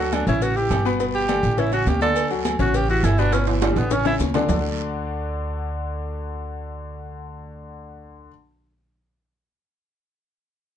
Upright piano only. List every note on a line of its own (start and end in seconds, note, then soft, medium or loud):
0.00 0.22 F#3 medium
0.00 0.22 F#4 medium
0.00 0.22 A4 medium
0.28 0.51 C#3 medium
0.28 0.51 C#4 medium
0.28 0.52 C#5 medium
0.56 0.80 E3 medium
0.56 0.80 E4 medium
0.56 0.81 G4 medium
0.85 0.97 B2 loud
0.85 0.97 B3 medium
0.85 0.98 B4 loud
0.99 1.23 B2 medium
0.99 1.24 B3 medium
0.99 1.24 B4 medium
1.28 1.53 D3 medium
1.28 1.53 D4 medium
1.28 1.53 G4 medium
1.57 1.70 C#3 medium
1.57 1.70 C#4 medium
1.57 1.70 C#5 medium
1.72 1.96 C#3 medium
1.72 1.96 C#4 medium
1.72 1.96 C#5 medium
2.02 2.26 D3 loud
2.02 2.26 D4 medium
2.02 2.26 D5 loud
2.31 2.55 F#3 medium
2.31 2.55 F#4 medium
2.31 2.55 A4 medium
2.59 2.83 C#3 medium
2.59 2.84 C#4 medium
2.59 2.84 C#5 loud
2.89 3.13 E3 medium
2.89 3.13 E4 medium
2.89 3.13 G4 medium
3.18 3.30 B2 loud
3.18 3.30 B3 loud
3.18 3.31 B4 loud
3.33 3.57 B2 medium
3.33 3.57 B3 medium
3.33 3.57 B4 medium
3.62 3.86 D3 medium
3.62 3.86 D4 medium
3.62 3.86 G4 medium
3.91 4.03 C#3 medium
3.91 4.03 C#4 medium
3.91 4.03 C#5 medium
4.05 4.29 C#3 medium
4.05 4.29 C#4 medium
4.05 4.29 C#5 medium
4.34 4.46 D3 loud
4.34 4.47 D4 loud
4.34 4.47 D5 medium
4.48 8.28 D3 medium
4.48 8.28 A3 medium
4.48 8.28 D4 medium
4.48 8.28 F#4 medium
4.48 8.28 A4 medium
4.48 8.28 D5 medium